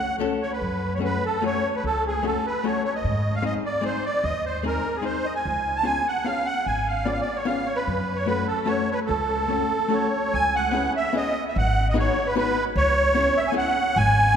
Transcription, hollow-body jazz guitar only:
0.20 0.41 A3 medium
0.20 0.42 C#4 medium
0.20 0.41 F#4 soft
0.20 0.42 A4 medium
0.99 1.22 A3 soft
0.99 1.22 C#4 soft
0.99 1.22 F#4 soft
0.99 1.23 G#4 soft
1.42 1.63 A3 medium
1.42 1.63 C#4 soft
1.42 1.64 F#4 soft
1.42 1.64 G#4 medium
2.23 2.44 A3 soft
2.23 2.44 C#4 soft
2.23 2.44 F#4 soft
2.23 2.45 G#4 soft
2.64 2.84 A3 medium
2.64 2.84 C#4 soft
2.64 2.85 F#4 soft
2.64 2.85 G#4 soft
3.42 3.63 G#3 soft
3.42 3.64 C4 soft
3.42 3.64 D#4 soft
3.42 3.64 G#4 soft
3.81 4.03 G#3 medium
3.81 4.03 C4 soft
3.81 4.03 D#4 soft
3.81 4.04 G#4 medium
4.63 4.84 G#3 soft
4.63 4.85 C4 soft
4.63 4.85 D#4 soft
4.63 4.86 G#4 soft
5.02 5.25 G#3 soft
5.02 5.24 C4 soft
5.02 5.25 D#4 soft
5.02 5.25 G#4 soft
5.83 6.05 B3 soft
5.83 6.06 C#4 soft
5.83 6.06 F4 soft
5.83 6.06 G#4 medium
6.24 6.46 B3 soft
6.24 6.47 C#4 soft
6.24 6.47 F4 soft
6.24 6.47 G#4 medium
7.05 7.27 B3 soft
7.05 7.27 C#4 soft
7.05 7.27 F4 soft
7.05 7.28 G#4 soft
7.45 7.67 B3 medium
7.45 7.67 C#4 medium
7.45 7.67 F4 soft
7.45 7.68 G#4 medium
8.26 8.48 A3 soft
8.26 8.48 C#4 soft
8.26 8.48 F#4 soft
8.26 8.48 A4 soft
8.65 8.88 A3 medium
8.65 8.88 C#4 soft
8.65 8.88 F#4 medium
8.65 8.89 A4 medium
9.48 9.70 A3 soft
9.48 9.71 C#4 soft
9.48 9.71 F#4 soft
9.48 9.71 A4 soft
9.88 10.11 A3 medium
9.88 10.12 C#4 soft
9.88 10.12 F#4 soft
9.88 10.12 A4 medium
10.71 10.93 B3 medium
10.71 10.94 C#4 medium
10.71 10.95 E4 soft
10.71 10.95 G#4 medium
11.13 11.34 B3 medium
11.13 11.35 C#4 soft
11.13 11.35 E4 medium
11.13 11.36 G#4 medium
11.94 12.15 B3 medium
11.94 12.15 D#4 soft
11.94 12.16 F#4 soft
11.94 12.16 G#4 medium
12.36 12.56 B3 medium
12.36 12.56 D#4 soft
12.36 12.57 F#4 medium
12.36 12.57 G#4 medium
13.15 13.36 B3 medium
13.15 13.36 C#4 medium
13.15 13.36 E4 medium
13.15 13.37 G#4 medium
13.52 13.74 B3 medium
13.52 13.75 C#4 soft
13.52 13.75 E4 medium
13.52 13.76 G#4 medium

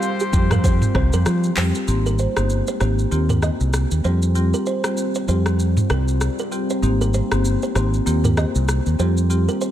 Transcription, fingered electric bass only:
0.33 0.81 F2 medium
0.95 1.09 C2 medium
1.13 1.23 F2 medium
1.26 1.50 F3 loud
1.57 1.71 F2 loud
1.88 2.25 G#1 loud
2.37 2.60 G1 medium
2.81 3.04 G#1 loud
3.12 3.49 D#2 loud
3.60 3.84 C2 medium
3.91 4.01 D#2 medium
4.04 4.52 F2 loud
5.28 5.76 F2 medium
5.90 6.27 C2 medium
6.83 7.20 G#1 loud
7.32 7.55 G1 medium
7.75 7.99 G#1 loud
8.06 8.44 D#2 loud
8.55 8.79 C2 medium
8.86 8.96 D#2 medium
8.99 9.47 F2 loud

